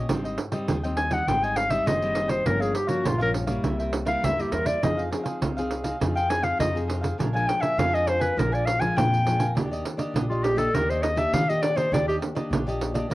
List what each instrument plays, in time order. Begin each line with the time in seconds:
0.09 upright bass G#1, nylon-string guitar G#2 G3 C4 D#4, cavaquinho G#4 C5 D#5 G5, pandeiro
0.24 cavaquinho C5 D#5 G5, pandeiro
0.38 muted cavaquinho stroke, pandeiro
0.52 nylon-string guitar G3 C4 D#4, cavaquinho C5 D#5 G5, pandeiro
0.68 upright bass D#2, nylon-string guitar D#3, cavaquinho G#4 C5 D#5 G5, pandeiro
0.84 nylon-string guitar G3 C4 D#4, cavaquinho C5 D#5 G5, pandeiro
0.97 clarinet G#5, pandeiro
1.10 nylon-string guitar G3 C4 D#4, cavaquinho C5 D#5 G5, clarinet F#5, pandeiro
1.27 upright bass G#1, nylon-string guitar G#2 G3 C4 D#4, cavaquinho G#4 C5 D#5 G5, clarinet G5, pandeiro
1.43 cavaquinho C5 D#5 G5, clarinet G#5, pandeiro
1.56 clarinet F5, pandeiro
1.69 nylon-string guitar G3 C4 D#4, cavaquinho C5 D#5 G5, clarinet E5, pandeiro
1.86 upright bass F#1, nylon-string guitar D#3, cavaquinho G#4 C5 D#5 G5, clarinet D#5, pandeiro
2.02 nylon-string guitar G3 C4 D#4, pandeiro
2.15 cavaquinho G#4 C5 D#5 G5, pandeiro
2.28 cavaquinho C5 D#5 G5, clarinet C5, pandeiro
2.45 upright bass G1, nylon-string guitar G2 F3 A#3 C#4, cavaquinho G4 A#4 C#5 F5, clarinet A#4, pandeiro
2.60 clarinet G#4, cavaquinho A#4 C#5 F5, pandeiro
2.73 clarinet G4, muted cavaquinho stroke, pandeiro
2.87 nylon-string guitar F3 A#3 C#4, clarinet F#4, cavaquinho A#4 C#5 F5, pandeiro
3.03 upright bass A#1, nylon-string guitar G2, clarinet F4, cavaquinho G4 A#4 C#5 F5, pandeiro
3.18 nylon-string guitar F3 A#3 C#4, cavaquinho A#4 C#5 F5, pandeiro
3.23 clarinet A#4
3.34 pandeiro
3.47 nylon-string guitar G3 A#3 E4, cavaquinho A#4 C#5 F5, pandeiro
3.63 upright bass C2, nylon-string guitar C3, cavaquinho E4 A#4 C5 E5, pandeiro
3.79 cavaquinho A#4 C5 E5, pandeiro
3.92 muted cavaquinho stroke, pandeiro
4.05 nylon-string guitar G3 A#3 E4, cavaquinho A#4 C5 E5, clarinet F5, pandeiro
4.22 upright bass D2, nylon-string guitar G2, cavaquinho E4 A#4 C5 E5, clarinet E5, pandeiro
4.38 nylon-string guitar G3 A#3 E4, clarinet G4, pandeiro
4.52 upright bass E2, cavaquinho E4 A#4 C5 E5, clarinet A#4, pandeiro
4.65 cavaquinho A#4 C5 E5, clarinet D5, pandeiro
4.82 upright bass F2, nylon-string guitar F3 C4 D#4 G#4, cavaquinho D#4 G#4 C5 F5, clarinet D#5, pandeiro
4.97 cavaquinho G#4 C5 F5, pandeiro
5.12 nylon-string guitar C4 D#4 G#4, pandeiro
5.24 cavaquinho G#4 C5 F5, pandeiro
5.41 upright bass C2, nylon-string guitar C3, cavaquinho D#4 G#4 C5 F5, pandeiro
5.57 nylon-string guitar C4 D#4 G#4, cavaquinho G#4 C5 F5, pandeiro
5.71 pandeiro
5.84 nylon-string guitar C4 D#4 G#4, cavaquinho G#4 C5 F5, pandeiro
6.00 upright bass F2, nylon-string guitar F3 C4 D#4 G#4, cavaquinho D#4 G#4 C5 F5, pandeiro
6.15 cavaquinho G#4 C5 F5, clarinet G5, pandeiro
6.29 nylon-string guitar C4 D#4 G#4, clarinet G#5, muted cavaquinho stroke, pandeiro
6.42 cavaquinho G#4 C5 F5, clarinet F5, pandeiro
6.59 upright bass F2, nylon-string guitar C3, cavaquinho D#4 G#4 C5 F5, clarinet D#5, pandeiro
6.75 nylon-string guitar C4 D#4 G#4, pandeiro
6.87 cavaquinho D#4 G#4 C5 F5, pandeiro
7.01 cavaquinho G#4 C5 F5, pandeiro
7.18 upright bass A#1, nylon-string guitar A#2 F3 G#3 D4, cavaquinho D4 A#4 F5 G#5, pandeiro
7.33 nylon-string guitar F3 G#3 D4, cavaquinho A#4 F5 G#5, clarinet G#5, pandeiro
7.47 clarinet G5, muted cavaquinho stroke, pandeiro
7.60 cavaquinho A#4 F5 G#5, clarinet E5, pandeiro
7.77 upright bass F2, nylon-string guitar F2 F3 G#3 D4, cavaquinho D4 A#4 F5 G#5, clarinet F5, pandeiro
7.92 cavaquinho A#4 F5 G#5, clarinet D#5, pandeiro
8.07 clarinet C5, pandeiro
8.19 cavaquinho A#4 F5 G#5, clarinet B4, pandeiro
8.36 upright bass A#1, nylon-string guitar A#2 F3 G#3 D4, cavaquinho D4 A#4 F5 G#5, clarinet A#4, pandeiro
8.52 cavaquinho A#4 F5 G#5, clarinet D5, pandeiro
8.66 clarinet F5, muted cavaquinho stroke, pandeiro
8.79 nylon-string guitar F3 G#3 D4, cavaquinho A#4 F5 G#5, clarinet G#5, pandeiro
8.96 nylon-string guitar F2, upright bass A#2, cavaquinho D4 A#4 F5 G#5, clarinet G5, pandeiro
9.14 pandeiro
9.25 nylon-string guitar F3 G#3 D4, cavaquinho D4 A#4 F5 G#5, pandeiro
9.39 cavaquinho A#4 F5 G#5, pandeiro
9.55 upright bass D#2, nylon-string guitar D#3 A#3 D4 G4, cavaquinho D4 G4 D5 D#5, pandeiro
9.71 cavaquinho G4 D5 D#5, pandeiro
9.85 muted cavaquinho stroke, pandeiro
9.97 nylon-string guitar A#3 D4 G4, cavaquinho G4 D5 D#5, pandeiro
10.14 upright bass A#1, nylon-string guitar A#2, cavaquinho D4 G4 D5 D#5, pandeiro
10.29 nylon-string guitar A#3 D4 G4, clarinet F4, cavaquinho G4 D5 D#5, pandeiro
10.44 clarinet G4, pandeiro
10.56 nylon-string guitar A#3 D4 G4, cavaquinho G4 D5 D#5, clarinet A4, pandeiro
10.74 upright bass D#2, nylon-string guitar D#3 A#3 D4 G4, cavaquinho D4 G4 D5 D#5, clarinet A#4, pandeiro
10.90 cavaquinho G4 D5 D#5, clarinet C5, pandeiro
11.03 clarinet D#5, muted cavaquinho stroke, pandeiro
11.16 nylon-string guitar A#3 D4 G4, cavaquinho G4 D5 D#5, clarinet E5, pandeiro
11.33 nylon-string guitar A#2, upright bass D#3, cavaquinho D4 G4 D5 D#5, clarinet F5, pandeiro
11.49 nylon-string guitar A#3 D4 G4, clarinet D#5, pandeiro
11.61 cavaquinho D4 G4 D5 D#5, clarinet D5, pandeiro
11.75 nylon-string guitar A#3 D4 G4, cavaquinho G4 D5 D#5, clarinet C5, pandeiro
11.92 upright bass D#2, nylon-string guitar D#3 A#3 D4 G4, cavaquinho D4 G4 D5 D#5, clarinet D5, pandeiro
12.08 clarinet G4, cavaquinho G4 D5 D#5, pandeiro
12.21 muted cavaquinho stroke, pandeiro
12.35 nylon-string guitar A#3 D4 G4, cavaquinho G4 D5 D#5, pandeiro
12.51 upright bass A#1, nylon-string guitar A#2, cavaquinho D4 G4 D5 D#5, pandeiro
12.67 nylon-string guitar A#3 D4 G4, cavaquinho G4 D5 D#5, pandeiro
12.81 pandeiro
12.94 nylon-string guitar A#3 D4 G4, cavaquinho G4 D5 D#5, pandeiro
13.10 upright bass D#2, nylon-string guitar D#3 A#3 D4, cavaquinho D4